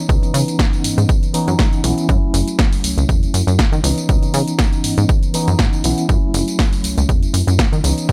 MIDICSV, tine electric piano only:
0, 0, Header, 1, 2, 480
1, 0, Start_track
1, 0, Tempo, 500000
1, 88, Time_signature, 4, 2, 24, 8
1, 7798, End_track
2, 0, Start_track
2, 0, Title_t, "Tine electric piano"
2, 0, Program_c, 0, 4
2, 82, Note_on_c, 0, 52, 83
2, 87, Note_on_c, 0, 59, 74
2, 93, Note_on_c, 0, 61, 79
2, 96, Note_on_c, 0, 63, 96
2, 1259, Note_off_c, 0, 52, 0
2, 1261, Note_off_c, 0, 59, 0
2, 1264, Note_off_c, 0, 61, 0
2, 1266, Note_off_c, 0, 63, 0
2, 1281, Note_on_c, 0, 52, 88
2, 1284, Note_on_c, 0, 59, 84
2, 1287, Note_on_c, 0, 61, 87
2, 1289, Note_on_c, 0, 63, 98
2, 1739, Note_off_c, 0, 52, 0
2, 1740, Note_off_c, 0, 59, 0
2, 1742, Note_off_c, 0, 61, 0
2, 1742, Note_off_c, 0, 63, 0
2, 1763, Note_on_c, 0, 52, 83
2, 1765, Note_on_c, 0, 59, 74
2, 1768, Note_on_c, 0, 61, 77
2, 1770, Note_on_c, 0, 64, 88
2, 1980, Note_off_c, 0, 52, 0
2, 1980, Note_off_c, 0, 59, 0
2, 1982, Note_off_c, 0, 61, 0
2, 1983, Note_off_c, 0, 64, 0
2, 1999, Note_on_c, 0, 54, 75
2, 3658, Note_off_c, 0, 54, 0
2, 3687, Note_on_c, 0, 52, 83
2, 3689, Note_on_c, 0, 59, 78
2, 3690, Note_on_c, 0, 61, 73
2, 3694, Note_on_c, 0, 63, 94
2, 3901, Note_off_c, 0, 52, 0
2, 3902, Note_off_c, 0, 59, 0
2, 3903, Note_off_c, 0, 61, 0
2, 3905, Note_off_c, 0, 63, 0
2, 3922, Note_on_c, 0, 52, 84
2, 3926, Note_on_c, 0, 59, 77
2, 3931, Note_on_c, 0, 61, 76
2, 3936, Note_on_c, 0, 63, 97
2, 5099, Note_off_c, 0, 52, 0
2, 5101, Note_off_c, 0, 59, 0
2, 5103, Note_off_c, 0, 61, 0
2, 5106, Note_off_c, 0, 63, 0
2, 5126, Note_on_c, 0, 52, 94
2, 5129, Note_on_c, 0, 59, 81
2, 5131, Note_on_c, 0, 61, 83
2, 5134, Note_on_c, 0, 63, 103
2, 5581, Note_off_c, 0, 52, 0
2, 5582, Note_off_c, 0, 59, 0
2, 5584, Note_off_c, 0, 61, 0
2, 5585, Note_off_c, 0, 63, 0
2, 5606, Note_on_c, 0, 52, 84
2, 5608, Note_on_c, 0, 59, 78
2, 5611, Note_on_c, 0, 61, 76
2, 5613, Note_on_c, 0, 64, 96
2, 5821, Note_off_c, 0, 52, 0
2, 5822, Note_off_c, 0, 59, 0
2, 5823, Note_off_c, 0, 61, 0
2, 5825, Note_off_c, 0, 64, 0
2, 5847, Note_on_c, 0, 57, 70
2, 5852, Note_on_c, 0, 61, 67
2, 5856, Note_on_c, 0, 64, 87
2, 7501, Note_off_c, 0, 57, 0
2, 7504, Note_off_c, 0, 61, 0
2, 7506, Note_off_c, 0, 64, 0
2, 7523, Note_on_c, 0, 52, 82
2, 7524, Note_on_c, 0, 59, 77
2, 7526, Note_on_c, 0, 61, 74
2, 7530, Note_on_c, 0, 63, 93
2, 7739, Note_off_c, 0, 52, 0
2, 7740, Note_off_c, 0, 59, 0
2, 7741, Note_off_c, 0, 61, 0
2, 7743, Note_off_c, 0, 63, 0
2, 7798, End_track
0, 0, End_of_file